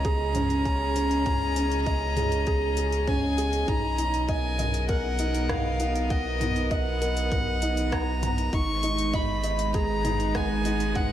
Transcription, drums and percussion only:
0.05 kick, closed hi-hat
0.35 closed hi-hat, mid tom
0.50 closed hi-hat
0.65 kick, closed hi-hat
0.96 closed hi-hat
1.11 closed hi-hat
1.26 kick, closed hi-hat, mid tom
1.56 closed hi-hat
1.72 closed hi-hat
1.86 kick, closed hi-hat
2.17 closed hi-hat, mid tom
2.32 closed hi-hat
2.47 kick, closed hi-hat
2.77 closed hi-hat
2.92 closed hi-hat
3.08 kick, closed hi-hat, mid tom
3.38 closed hi-hat
3.53 closed hi-hat
3.68 kick, closed hi-hat, mid tom
3.98 closed hi-hat
4.14 closed hi-hat
4.29 kick, closed hi-hat
4.59 closed hi-hat, mid tom
4.74 closed hi-hat
4.89 kick, closed hi-hat
5.19 closed hi-hat
5.35 closed hi-hat
5.49 kick, cross-stick, closed hi-hat, mid tom
5.80 closed hi-hat
5.96 closed hi-hat
6.10 kick, closed hi-hat
6.41 closed hi-hat, mid tom
6.56 closed hi-hat
6.71 kick, closed hi-hat
7.02 closed hi-hat
7.17 closed hi-hat
7.32 kick, closed hi-hat, mid tom
7.62 closed hi-hat
7.77 closed hi-hat
7.92 kick, cross-stick, closed hi-hat
8.23 closed hi-hat, mid tom
8.38 closed hi-hat
8.53 kick, closed hi-hat
8.83 closed hi-hat
8.98 closed hi-hat
9.14 kick, closed hi-hat, mid tom
9.44 closed hi-hat
9.59 closed hi-hat
9.74 kick, closed hi-hat
10.05 closed hi-hat, mid tom
10.20 closed hi-hat
10.35 kick, cross-stick, closed hi-hat
10.65 closed hi-hat
10.80 closed hi-hat
10.95 kick, closed hi-hat, mid tom

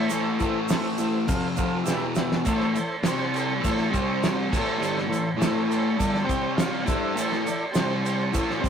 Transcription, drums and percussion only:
0.10 shaker
0.40 kick, shaker
0.68 snare, open hi-hat, shaker
0.98 shaker
1.28 kick, open hi-hat, shaker
1.57 kick, shaker
1.86 snare, shaker
2.15 snare, shaker
2.32 snare
2.45 kick, crash, shaker
2.60 snare
2.75 crash, shaker
3.04 snare, crash, shaker
3.34 crash, shaker
3.64 kick, crash, shaker
3.77 snare
3.93 kick, crash, shaker
4.23 snare, crash, shaker
4.53 kick, crash, shaker
4.82 crash, shaker
4.98 snare
5.12 crash, shaker
5.42 snare, crash, shaker
5.71 crash, shaker
6.00 kick, crash, shaker
6.15 snare
6.29 kick, crash, shaker
6.58 snare, crash, shaker
6.87 kick, crash, shaker
7.17 crash, shaker
7.32 snare
7.46 crash, shaker
7.74 snare, crash, shaker
8.06 crash, shaker
8.34 kick, crash, shaker
8.50 snare
8.64 kick, crash, shaker

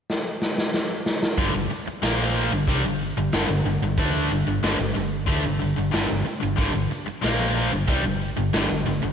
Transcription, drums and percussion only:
0.10 snare
0.42 snare
0.58 snare
0.74 snare
1.06 snare
1.23 snare
1.38 kick, open hi-hat
1.70 open hi-hat
2.02 snare, open hi-hat
2.35 open hi-hat
2.67 kick, open hi-hat
3.00 open hi-hat
3.32 snare, open hi-hat
3.65 open hi-hat
3.97 kick, open hi-hat
4.30 open hi-hat
4.63 snare, open hi-hat
4.95 open hi-hat
5.28 kick, open hi-hat
5.60 open hi-hat
5.93 snare, open hi-hat
6.26 open hi-hat
6.58 kick, open hi-hat
6.91 open hi-hat
7.23 snare, open hi-hat
7.56 open hi-hat
7.88 kick, open hi-hat
8.21 open hi-hat
8.53 snare, open hi-hat
8.86 open hi-hat

